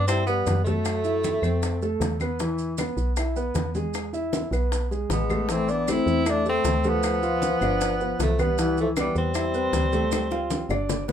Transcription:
Already playing: fm bass G2
0.07 trombone G3, tenor saxophone C4, grand piano E4 E5, high bongo, high conga, claves, maracas
0.26 trombone G3, tenor saxophone B3, grand piano B3 B4, high conga, maracas
0.47 fm bass F#2, high bongo, low bongo, high conga, maracas
0.64 trombone F#3, tenor saxophone A3, grand piano A3 A4, high conga, maracas
0.85 high bongo, high conga, claves, maracas
1.04 grand piano E4 E5, high bongo, high conga, maracas
1.24 high bongo, high conga, maracas
1.42 fm bass F2, grand piano C4 C5, high bongo, claves, maracas
1.63 high bongo, high conga, maracas
1.82 grand piano A3 A4, high bongo, high conga, maracas
2.00 fm bass E2, high bongo, low bongo, high conga, maracas
2.20 grand piano B3 B4, high conga, claves, maracas
2.39 grand piano E3 E4, high bongo, maracas
2.58 high conga, maracas
2.78 grand piano B3 B4, high bongo, high conga, claves, maracas
2.97 fm bass B1, high conga, maracas
3.16 grand piano E4 E5, high bongo, high conga, claves, maracas
3.36 grand piano B3 B4, high conga, maracas
3.55 fm bass E2, high bongo, low bongo, high conga, maracas
3.75 grand piano G#3 G#4, high conga, maracas
3.94 high bongo, claves, maracas
4.13 grand piano E4 E5, high bongo, high conga, maracas
4.33 high bongo, high conga, maracas
4.51 fm bass B1, grand piano B3 B4, high bongo, high conga, claves, maracas
4.72 high bongo, high conga, maracas
4.91 grand piano G#3 G#4, high bongo, high conga, maracas
5.10 fm bass A1, trombone G#3, tenor saxophone B3, high bongo, low bongo, high conga, maracas
5.30 grand piano A3 A4, high conga, claves, maracas
5.49 grand piano E3 E4, trombone A3, tenor saxophone C4, high bongo, maracas
5.68 trombone B3, tenor saxophone D4, high conga, maracas
5.88 grand piano A3 A4, trombone C4, tenor saxophone E4, high bongo, high conga, claves, maracas
6.07 fm bass E2, maracas
6.26 trombone A3, tenor saxophone D4, grand piano E4 E5, high bongo, high conga, claves, maracas
6.46 grand piano A3 A4, trombone A3, tenor saxophone C4, high conga, maracas
6.64 fm bass D2, high bongo, low bongo, high conga, maracas
6.84 trombone F3, grand piano A3 A4, tenor saxophone B3, high conga, maracas
7.03 high bongo, claves, maracas
7.23 grand piano F4 F5, high bongo, high conga, maracas
7.42 high bongo, high conga, maracas
7.61 fm bass G1, grand piano D4 D5, high bongo, high conga, claves, maracas
7.81 high bongo, high conga, maracas
8.01 grand piano B3 B4, high bongo, high conga, maracas
8.19 fm bass C2, trombone F3, tenor saxophone A3, high bongo, low bongo, high conga, maracas
8.39 trombone G3, grand piano B3 B4, tenor saxophone B3, high conga, claves, maracas
8.58 grand piano E3 E4, high bongo, high conga, maracas
8.77 trombone F3, tenor saxophone A3, high conga, maracas
8.97 trombone E3, tenor saxophone G3, grand piano B3 B4, high bongo, high conga, claves, maracas
9.15 fm bass E2, trombone G3, tenor saxophone C4, high conga, maracas
9.34 grand piano E4 E5, high bongo, high conga, claves, maracas
9.54 grand piano C4 B4, high conga, maracas
9.73 fm bass D2, high bongo, low bongo, high conga, maracas
9.92 grand piano A3 A4, high conga, maracas
10.12 high bongo, high conga, claves, maracas
10.31 grand piano F4 F5, high bongo, high conga, maracas
10.50 high bongo, high conga, maracas
10.69 fm bass G1, grand piano D4 D5, low bongo, claves, maracas
10.89 low bongo, high conga, maracas
11.08 grand piano B3 B4, low bongo, high conga, maracas

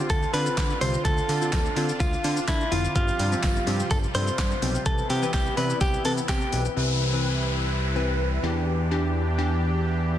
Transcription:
Already playing: synth pluck D3 C4 F4, supersaw synth D3 C4 F4
0.10 analog synth bass D2, clean electric guitar A4, kick, closed hi-hat, tambourine, shaker
0.23 shaker
0.33 synth pluck D3 C4 F4, analog synth bass D3, clean electric guitar B4, open hi-hat, shaker
0.46 shaker
0.57 analog synth bass D3, kick, snare, clap, closed hi-hat, tambourine, shaker
0.70 shaker
0.81 analog synth bass C2, synth pluck D3 C4 F4, clean electric guitar C5, open hi-hat, tambourine, shaker
0.94 shaker
1.05 analog synth bass D2, synth pluck D3 C4 F4, supersaw synth D4, clean electric guitar A4, kick, closed hi-hat, tambourine, shaker
1.18 shaker
1.29 analog synth bass D3, open hi-hat, tambourine, shaker
1.41 synth pluck D3 C4 F4, shaker
1.53 analog synth bass D2, kick, snare, clap, closed hi-hat, tambourine, shaker
1.65 shaker
1.76 synth pluck D3 C4 F4, analog synth bass D3, open hi-hat, tambourine, shaker
1.89 shaker
2.00 analog synth bass D2, clean electric guitar F4, kick, closed hi-hat, tambourine, shaker
2.13 shaker
2.24 synth pluck D3 C4 F4, analog synth bass D3, open hi-hat, tambourine, shaker
2.37 shaker
2.48 analog synth bass D3, clean electric guitar E4, kick, snare, clap, closed hi-hat, tambourine, shaker
2.61 shaker
2.72 analog synth bass F1, synth pluck D3 C4 E4, clean electric guitar F4, open hi-hat, tambourine, shaker
2.84 shaker
2.96 analog synth bass G1, supersaw synth C3 G3, synth pluck F3 C4 G4, clean electric guitar F4, kick, closed hi-hat, shaker
3.08 shaker
3.19 analog synth bass G2, open hi-hat, tambourine, shaker
3.32 synth pluck F3 C4 G4, shaker
3.43 analog synth bass G1, kick, snare, clap, closed hi-hat, tambourine, shaker
3.56 shaker
3.67 analog synth bass G2, synth pluck F3 C4 G4, open hi-hat, tambourine, shaker
3.80 shaker
3.91 analog synth bass G1, clean electric guitar A4, kick, closed hi-hat, tambourine, shaker
4.03 shaker
4.15 analog synth bass G2, synth pluck F3 C4 A4, clean electric guitar C5, open hi-hat, shaker
4.27 shaker
4.38 analog synth bass G2, kick, snare, clap, closed hi-hat, tambourine, shaker
4.51 shaker
4.62 analog synth bass B1, synth pluck F3 C4 G4, open hi-hat, tambourine, shaker
4.75 shaker
4.86 analog synth bass C2, synth pluck E3 C4 B4, supersaw synth B3 E4, clean electric guitar A4, kick, closed hi-hat, shaker
4.98 shaker
5.10 analog synth bass C3, clean electric guitar G4, open hi-hat, tambourine, shaker
5.22 synth pluck E3 C4 B4, shaker
5.34 analog synth bass C2, clean electric guitar G4, kick, snare, clap, closed hi-hat, tambourine, shaker
5.46 shaker
5.57 analog synth bass C3, synth pluck E3 C4 D5, clean electric guitar B4, open hi-hat, tambourine, shaker
5.70 shaker
5.81 analog synth bass C2, clean electric guitar G4, kick, closed hi-hat, tambourine, shaker
5.94 shaker
6.05 analog synth bass C3, synth pluck E3 C4 B4, clean electric guitar A4, open hi-hat, shaker
6.18 shaker
6.29 analog synth bass C3, clean electric guitar G4, kick, snare, clap, closed hi-hat, tambourine, shaker
6.41 shaker
6.52 analog synth bass B1, synth pluck E3 C4 B4, open hi-hat, tambourine, shaker
6.65 shaker
6.76 analog synth bass C2, supersaw synth C3 E4 B4, synth pluck E3 C4 B4, downlifter
7.13 synth pluck E3 C4 B4
7.95 synth pluck E3 C4 B4
8.43 analog synth bass E2, synth pluck E3 D4 G4, supersaw synth E3 D4 G4
8.91 synth pluck E3 D4 G4
9.38 synth pluck E3 D4 G4

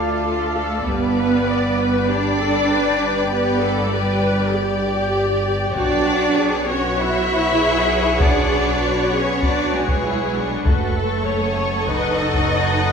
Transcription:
Already playing: double bass section D2, cello section A3, viola section F4, ambient pad A4 D5 F5, violin section A4 F5
0.26 viola section F4
0.57 viola section A4
0.85 double bass section G1, viola section G3, cello section B3, ambient pad G4 D5 G5, violin section B4 D5 G5 B5, taiko
1.17 viola section B4
1.47 viola section D5
1.78 viola section B4
2.08 cello section D4, viola section G4, violin section D5
2.40 viola section A4
2.70 viola section B4
3.31 cello section B3, viola section G4, violin section B4
3.62 viola section A4
3.92 cello section G3, violin section G4, viola section B4
4.53 viola section G4
5.75 double bass section B1, cello section D4, viola section F#4, ambient pad B4 F#5 C#6, violin section C#5 D5, taiko
6.37 viola section G#4
6.68 cello section C#4, viola section F#4, violin section C#5
6.97 cello section E4, violin section E5
7.59 viola section G#4
8.20 cello section D4, violin section D5, taiko
8.83 viola section F#4
9.12 cello section C#4, viola section G#4, violin section C#5
9.43 cello section D4, viola section F#4, violin section D5, taiko
9.74 cello section G#3, violin section G#4
9.88 taiko
10.05 viola section E4
10.36 viola section D4
10.65 double bass section F#1, cello section A3, viola section F#4, ambient pad A4 C#5 F#5, violin section A4 C#6, taiko
10.97 viola section A4
11.27 viola section C#5, violin section D#6
11.88 cello section D#4, viola section B4, violin section D#5 F#6, taiko
12.19 viola section A4
12.33 taiko
12.49 viola section B4

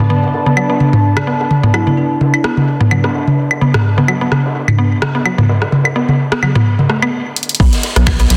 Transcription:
Already playing: ambient pad D4 B4 A5
0.10 synth arpeggio sound B3, closed hi-hat, high tom
0.23 snare
0.33 snare, closed hi-hat
0.46 synth arpeggio sound B3, high tom
0.57 synth arpeggio sound F#3, high woodblock
0.69 synth arpeggio sound B3, snare
0.80 snare, closed hi-hat, high tom
0.93 mid tom
1.04 closed hi-hat
1.17 cross-stick, high tom, high woodblock
1.27 synth arpeggio sound B3, snare
1.40 snare
1.51 closed hi-hat, high tom
1.63 synth arpeggio sound B3, mid tom
1.74 synth arpeggio sound F#3, marimba E4, cross-stick, snare, high woodblock
1.87 synth arpeggio sound B3, marimba E4, high tom
1.97 marimba D4, closed hi-hat
2.21 snare, closed hi-hat, high tom
2.34 marimba E4, high woodblock
2.44 synth arpeggio sound B3, marimba E4, cross-stick
2.57 snare, high tom
2.68 closed hi-hat
2.80 synth arpeggio sound B3, mid tom
2.91 synth arpeggio sound F#3, closed hi-hat, high tom, high woodblock
3.04 synth arpeggio sound B3, cross-stick, snare
3.15 snare, closed hi-hat
3.27 high tom
3.38 closed hi-hat
3.51 snare, high woodblock
3.61 synth arpeggio sound B3, closed hi-hat, high tom
3.74 cross-stick, snare, mid tom
3.85 closed hi-hat
3.97 synth arpeggio sound B3, snare, high tom
4.08 synth arpeggio sound F#3, snare, high woodblock
4.21 synth arpeggio sound B3
4.32 cross-stick, closed hi-hat, high tom
4.46 snare
4.55 snare, closed hi-hat
4.68 mid tom, high tom, high woodblock
4.79 synth arpeggio sound B3, closed hi-hat
5.02 cross-stick, snare, high tom
5.15 synth arpeggio sound B3, snare
5.25 synth arpeggio sound F#3, high woodblock
5.38 synth arpeggio sound B3, mid tom, high tom
5.49 snare, closed hi-hat
5.62 cross-stick, snare, closed hi-hat
5.72 snare, closed hi-hat, high tom
5.84 snare, closed hi-hat, high woodblock
5.96 synth arpeggio sound B3, snare, closed hi-hat
6.09 snare, closed hi-hat, high tom
6.19 closed hi-hat
6.32 synth arpeggio sound B3, cross-stick, snare
6.43 synth arpeggio sound F#3, high tom, high woodblock
6.55 synth arpeggio sound B3, mid tom
6.66 closed hi-hat
6.79 snare, high tom
6.89 synth arpeggio sound A3, cross-stick, snare
7.02 synth arpeggio sound B3, high woodblock
7.36 closed hi-hat
7.43 closed hi-hat
7.49 closed hi-hat
7.55 closed hi-hat
7.60 analog synth bass B1, synth arpeggio sound B3, kick, closed hi-hat
7.73 snare, closed hi-hat
7.83 snare, closed hi-hat
7.96 analog synth bass B1, synth arpeggio sound B3, cross-stick, closed hi-hat
8.06 synth arpeggio sound F#3, finger snap, kick, snare, closed hi-hat, high woodblock
8.19 synth arpeggio sound B3, snare, closed hi-hat
8.30 analog synth bass B1, snare, closed hi-hat

